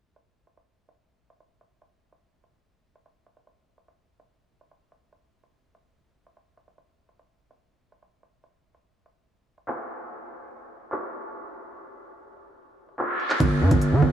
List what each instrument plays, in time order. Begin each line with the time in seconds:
0.16 closed hi-hat
0.47 closed hi-hat
0.57 closed hi-hat
0.89 closed hi-hat
1.30 closed hi-hat
1.40 closed hi-hat
1.61 closed hi-hat
1.82 closed hi-hat
2.13 closed hi-hat
2.44 closed hi-hat
2.96 closed hi-hat
3.06 closed hi-hat
3.27 closed hi-hat
3.37 closed hi-hat
3.47 closed hi-hat
3.78 closed hi-hat
3.88 closed hi-hat
4.20 closed hi-hat
4.61 closed hi-hat
4.71 closed hi-hat
4.92 closed hi-hat
5.13 closed hi-hat
5.44 closed hi-hat
5.75 closed hi-hat
6.27 closed hi-hat
6.37 closed hi-hat
6.57 closed hi-hat
6.68 closed hi-hat
6.78 closed hi-hat
7.09 closed hi-hat
7.19 closed hi-hat
7.51 closed hi-hat
7.92 closed hi-hat
8.03 closed hi-hat
8.23 closed hi-hat
8.44 closed hi-hat
8.75 closed hi-hat
9.06 closed hi-hat
9.58 closed hi-hat
9.68 clap, closed hi-hat
9.89 closed hi-hat
9.99 closed hi-hat
10.09 closed hi-hat
10.40 closed hi-hat
10.51 closed hi-hat
10.82 closed hi-hat
10.92 clap
11.23 closed hi-hat
11.34 closed hi-hat
11.54 closed hi-hat
11.75 closed hi-hat
12.06 closed hi-hat
12.37 closed hi-hat
12.89 closed hi-hat
12.99 clap
13.20 closed hi-hat
13.30 clap, closed hi-hat
13.40 808-style bass G1, kick, closed hi-hat
13.61 808-style bass G2
13.71 808-style bass G1, kick, closed hi-hat
13.82 closed hi-hat
13.92 808-style bass D3
14.02 808-style bass G1